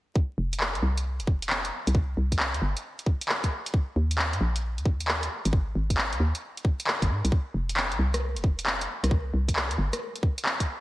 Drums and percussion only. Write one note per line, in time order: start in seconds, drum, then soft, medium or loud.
0.15 kick loud
0.53 closed hi-hat medium
0.60 clap loud
0.75 closed hi-hat soft
0.98 closed hi-hat medium
1.20 closed hi-hat soft
1.27 kick loud
1.42 closed hi-hat medium
1.50 clap loud
1.65 closed hi-hat soft
1.87 closed hi-hat medium
1.95 kick loud
2.32 kick medium
2.32 closed hi-hat medium
2.39 clap loud
2.54 closed hi-hat soft
2.77 closed hi-hat medium
2.99 closed hi-hat soft
3.06 kick loud
3.21 closed hi-hat medium
3.29 clap loud
3.44 kick medium
3.44 closed hi-hat soft
3.66 closed hi-hat medium
3.74 kick loud
4.11 closed hi-hat medium
4.18 clap loud
4.33 closed hi-hat soft
4.56 closed hi-hat medium
4.78 closed hi-hat soft
4.86 kick loud
5.01 closed hi-hat medium
5.08 clap loud
5.23 closed hi-hat soft
5.45 closed hi-hat medium
5.53 kick loud
5.90 kick medium
5.90 closed hi-hat medium
5.98 clap loud
6.13 closed hi-hat soft
6.35 closed hi-hat medium
6.57 closed hi-hat soft
6.65 kick loud
6.80 closed hi-hat medium
6.87 clap loud
7.02 kick medium
7.02 closed hi-hat soft
7.25 closed hi-hat medium
7.32 kick loud
7.69 closed hi-hat medium
7.77 clap loud
7.92 closed hi-hat soft
8.14 cross-stick medium
8.14 closed hi-hat medium
8.37 closed hi-hat soft
8.44 kick loud
8.59 closed hi-hat medium
8.66 clap loud
8.81 closed hi-hat soft
9.04 cross-stick medium
9.04 closed hi-hat medium
9.11 kick loud
9.48 kick medium
9.48 closed hi-hat medium
9.56 clap loud
9.71 closed hi-hat soft
9.93 cross-stick medium
9.93 closed hi-hat medium
10.16 closed hi-hat soft
10.23 kick loud
10.38 closed hi-hat medium
10.45 clap loud
10.60 kick medium
10.60 closed hi-hat medium